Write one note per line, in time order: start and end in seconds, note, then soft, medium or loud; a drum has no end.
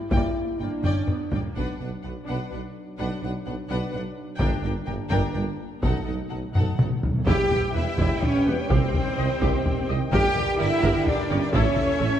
0.11 0.20 G1 medium
0.11 0.20 G2 medium
0.11 0.28 G3 medium
0.11 0.33 A#3 medium
0.11 0.29 A#3 medium
0.11 0.58 E4 medium
0.11 0.35 D5 medium
0.11 0.34 G5 medium
0.11 taiko medium
0.59 0.68 G1 soft
0.59 0.69 G2 soft
0.59 0.82 A#3 medium
0.59 1.32 D4 medium
0.59 0.70 D5 soft
0.59 0.68 G5 soft
0.83 0.93 G1 medium
0.83 0.93 G2 medium
0.83 1.07 C#4 medium
0.83 1.06 D5 medium
0.83 1.06 G5 medium
0.83 taiko low-mid medium
1.07 1.31 B3 soft
1.07 taiko low-mid medium
1.31 1.40 G1 soft
1.31 1.41 G2 soft
1.31 1.55 A#3 medium
1.31 1.42 D5 soft
1.31 1.39 G5 soft
1.31 taiko low medium
1.55 1.65 B1 soft
1.55 1.67 B1 soft
1.55 1.65 B2 soft
1.55 4.37 F#3 soft
1.55 1.78 D4 soft
1.55 4.37 D4 soft
1.55 1.79 B4 soft
1.55 1.78 F#5 soft
1.55 taiko soft
1.80 1.89 B1 soft
1.80 1.91 B1 soft
1.80 1.89 B2 soft
1.80 1.88 D4 soft
1.80 1.89 B4 soft
1.80 1.88 F#5 soft
2.03 2.12 B1 soft
2.03 2.15 B1 soft
2.03 2.13 B2 soft
2.03 2.12 D4 soft
2.03 2.12 B4 soft
2.03 2.11 F#5 soft
2.27 2.37 B1 soft
2.27 2.38 B1 soft
2.27 2.37 B2 soft
2.27 2.49 D4 soft
2.27 2.49 B4 soft
2.27 2.49 F#5 soft
2.50 2.61 B1 soft
2.50 2.60 B1 soft
2.50 2.60 B2 soft
2.50 2.59 D4 soft
2.50 2.58 B4 soft
2.50 2.60 F#5 soft
2.98 3.07 B1 soft
2.98 3.09 B1 medium
2.98 3.07 B2 soft
2.98 3.20 D4 soft
2.98 3.20 B4 soft
2.98 3.20 F#5 soft
3.22 3.32 B1 soft
3.22 3.31 B1 soft
3.22 3.31 B2 soft
3.22 3.30 D4 soft
3.22 3.31 B4 soft
3.22 3.32 F#5 soft
3.46 3.54 B1 soft
3.46 3.56 B1 soft
3.46 3.55 B2 soft
3.46 3.55 D4 soft
3.46 3.54 B4 soft
3.46 3.55 F#5 soft
3.69 3.78 B1 medium
3.69 3.80 B1 medium
3.69 3.79 B2 medium
3.69 3.91 D4 medium
3.69 3.90 B4 medium
3.69 3.91 F#5 medium
3.91 4.02 B1 soft
3.91 4.03 B1 soft
3.91 4.01 B2 soft
3.91 4.01 D4 soft
3.91 3.99 B4 soft
3.91 4.01 F#5 medium
4.38 4.48 G1 medium
4.38 4.50 G1 medium
4.38 4.49 G2 medium
4.38 5.79 A#3 medium
4.38 4.62 D4 medium
4.38 5.79 D4 medium
4.38 4.61 A#4 medium
4.38 4.61 G5 medium
4.38 taiko medium
4.64 4.72 G1 soft
4.64 4.73 G1 medium
4.64 4.72 G2 medium
4.64 4.72 D4 soft
4.64 4.72 A#4 soft
4.64 4.72 G5 soft
4.86 4.96 G1 medium
4.86 4.98 G1 soft
4.86 4.96 G2 soft
4.86 4.95 D4 soft
4.86 4.94 A#4 soft
4.86 4.94 G5 soft
5.10 5.20 G1 medium
5.10 5.21 G1 medium
5.10 5.19 G2 medium
5.10 5.33 D4 medium
5.10 5.32 A#4 medium
5.10 5.32 G5 medium
5.10 taiko medium
5.33 5.43 G1 soft
5.33 5.45 G1 soft
5.33 5.43 G2 medium
5.33 5.42 D4 medium
5.33 5.41 A#4 soft
5.33 5.42 G5 medium
5.82 5.91 B1 medium
5.82 5.93 B1 medium
5.82 5.91 B2 medium
5.82 6.99 A3 medium
5.82 6.99 D#4 soft
5.82 6.05 D#4 soft
5.82 6.04 A4 soft
5.82 6.04 F#5 medium
5.82 taiko medium
5.98 6.05 B2 soft
6.05 6.17 B1 soft
6.05 6.16 B1 soft
6.05 6.15 B2 soft
6.05 6.14 D#4 soft
6.05 6.13 A4 soft
6.05 6.14 F#5 soft
6.15 6.21 B2 soft
6.22 6.29 B2 soft
6.30 6.40 B1 soft
6.30 6.41 B1 soft
6.30 6.36 B2 soft
6.30 6.40 B2 soft
6.30 6.39 D#4 soft
6.30 6.38 A4 soft
6.30 6.38 F#5 soft
6.38 6.44 B2 soft
6.45 6.51 B2 soft
6.52 6.63 B1 soft
6.52 6.65 B1 soft
6.52 6.58 B2 soft
6.52 6.63 B2 soft
6.52 6.78 D#4 soft
6.52 6.77 A4 soft
6.52 6.76 F#5 soft
6.52 taiko low-mid medium
6.59 6.66 B2 soft
6.67 6.74 B2 soft
6.75 6.81 B2 medium
6.75 6.86 A4 soft
6.75 6.85 F#5 soft
6.79 6.87 B1 soft
6.79 6.90 B1 soft
6.79 6.88 B2 soft
6.79 6.88 B2 medium
6.79 6.87 D#4 soft
6.79 taiko mid medium
6.89 6.95 B2 medium
6.97 7.03 B2 medium
7.03 7.09 B2 medium
7.03 taiko low medium
7.10 7.17 B2 medium
7.18 7.26 B2 medium
7.26 7.38 E1 medium
7.26 7.35 E2 medium
7.26 8.66 B2 medium
7.26 10.09 G3 medium
7.26 7.49 E4 medium
7.26 10.08 G4 medium
7.26 7.49 G4 medium
7.26 7.72 G4 loud
7.26 8.66 B4 medium
7.26 7.71 G5 medium
7.26 10.08 G5 medium
7.26 taiko medium
7.51 taiko low soft
7.74 7.85 E1 medium
7.74 7.83 E2 medium
7.74 8.22 E4 medium
7.74 7.83 G4 medium
7.74 7.83 B4 medium
7.74 8.21 E5 medium
7.98 8.09 E1 medium
7.98 8.06 E2 medium
7.98 8.21 E4 medium
7.98 8.21 G4 medium
7.98 taiko medium
8.22 8.47 C#4 loud
8.22 8.46 C#5 medium
8.22 8.47 C#5 medium
8.22 taiko low medium
8.46 8.56 E1 medium
8.46 8.54 E2 medium
8.46 8.59 B3 medium
8.46 8.55 G4 medium
8.46 8.55 B4 medium
8.46 8.58 B4 medium
8.46 8.59 B4 medium
8.58 8.71 C#4 medium
8.58 8.70 C#5 medium
8.58 8.71 C#5 medium
8.70 8.78 C2 medium
8.70 8.80 C2 medium
8.70 10.10 D#3 medium
8.70 9.87 C4 medium
8.70 8.92 G4 medium
8.70 10.12 C5 medium
8.70 9.89 C5 medium
8.70 taiko loud
8.94 taiko low medium
9.17 9.25 C2 medium
9.17 9.28 C2 medium
9.17 9.26 G4 medium
9.17 9.26 D#5 medium
9.40 9.48 C2 medium
9.40 9.52 C2 medium
9.40 9.64 G4 medium
9.40 taiko medium
9.66 taiko low medium
9.88 9.96 C2 medium
9.88 9.99 C2 medium
9.88 9.97 G4 medium
9.88 9.97 D#5 medium
10.12 10.21 G1 medium
10.12 10.22 G1 medium
10.12 11.54 D3 medium
10.12 11.51 G3 medium
10.12 10.34 G4 medium
10.12 10.57 G4 loud
10.12 10.34 A#4 medium
10.12 11.51 A#4 medium
10.12 11.51 D5 medium
10.12 11.50 G5 medium
10.12 10.57 G5 medium
10.12 taiko medium
10.36 taiko low medium
10.59 10.68 G1 medium
10.59 10.70 G1 medium
10.59 11.07 E4 loud
10.59 10.67 A#4 medium
10.59 10.67 D5 medium
10.59 11.07 E5 medium
10.59 11.07 E5 loud
10.83 10.93 G1 medium
10.83 10.91 G1 medium
10.83 11.05 G4 medium
10.83 11.05 A#4 medium
10.83 taiko medium
11.07 11.30 D4 loud
11.07 11.30 D5 medium
11.07 taiko low medium
11.30 11.40 G1 medium
11.30 11.39 G1 medium
11.30 11.42 C#4 medium
11.30 11.39 A#4 medium
11.30 11.42 C#5 medium
11.30 11.39 D5 medium
11.40 11.54 D4 medium
11.40 11.53 D5 medium
11.52 11.62 A1 medium
11.52 11.64 A1 medium
11.52 12.20 E3 medium
11.52 12.20 A3 medium
11.52 12.20 C#4 loud
11.52 11.75 E4 medium
11.52 12.20 A4 medium
11.52 11.75 A4 medium
11.52 12.20 C#5 medium
11.52 12.20 E5 medium
11.52 taiko medium
11.76 taiko low medium
11.99 12.09 A1 medium
11.99 12.10 A1 medium
11.99 12.07 A4 medium
11.99 12.08 C#5 medium